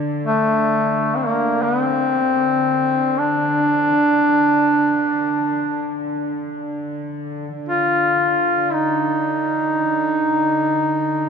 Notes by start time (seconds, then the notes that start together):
Already playing: D3
0.27 A3
1.17 C4
1.26 A#3
1.62 B3
1.81 C4
3.19 D4
7.66 D3 F4
8.74 D#4